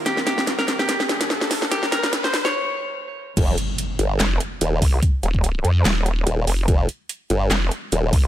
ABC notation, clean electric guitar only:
X:1
M:4/4
L:1/16
Q:"Swing 16ths" 1/4=145
K:Ebmix
V:1 name="Clean electric guitar"
G z G2 z B z G8 z | G z B2 z c z d8 z | z16 | z16 |
z16 |]